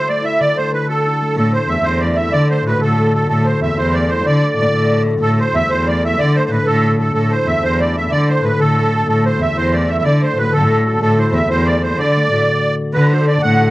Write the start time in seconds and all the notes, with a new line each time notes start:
Already playing: D4 E4 F#4
0.08 A3 D5
0.23 E4 E5
0.39 D3 D5
0.57 A3 C5
0.73 D4 B4
0.88 F#4 A4
1.06 D4
1.21 A3
1.36 A2 A3 A4
1.53 E4 C5
1.68 E2 A3 E5
1.84 E2 E4 C5
2.00 A3 D5
2.16 E4 E5
2.32 D3 D5
2.50 A3 C5
2.65 A2 F#4 B4
2.81 A2 D3 A4
2.99 A3
3.14 F#4 A4
3.29 A2 A3 A4
3.45 E4 C5
3.62 E2 A3 E5
3.77 E2 E4 C5
3.94 A3 D5
4.09 E4 C5
4.25 D3 D5
4.42 A3
4.57 A2 F#4
4.73 A2 A4
4.91 F#4
5.07 A3
5.21 A2 A3 A4
5.39 E4 C5
5.54 E2 A3 E5
5.70 E2 E4 C5
5.87 A3 D5
6.05 E4 E5
6.19 D3 D5
6.36 A3 C5
6.46 B4 C5
6.51 A2 D4
6.66 A2 F#4 A4
6.84 D4
6.98 A3 A4
7.14 A2 A3 A4
7.31 E4 C5
7.47 E2 A3 E5
7.62 E2 E4 C5
7.80 A3 D5
7.96 E4 E5
8.11 D3 D5
8.28 A3 C5
8.43 A2 F#4 B4
8.59 A2 D3 A4
8.78 A3
8.93 F#4
9.07 A2 A3 A4
9.26 E4 C5
9.40 E2 A3 E5
9.55 E2 E4 C5
9.73 A3 D5
9.88 E4 E5
9.98 E5
10.04 D3 D5
10.22 A3 C5
10.36 A2 F#4 B4
10.52 A2 D3 A4
10.70 A3
10.85 F#4 A4
11.01 A2 A3 A4
11.18 E4 C5
11.34 E2 A3 E5
11.49 E2 E4 C5
11.66 A3 D5
11.83 E4 C5
11.98 D3 D5
12.16 A3
12.31 A2 F#4
12.94 D3 B4
13.11 D4 F#4 A4 C5
13.28 D4 F#4 A4 D5
13.43 A2 A3 F#5
13.61 D4 F#4 A4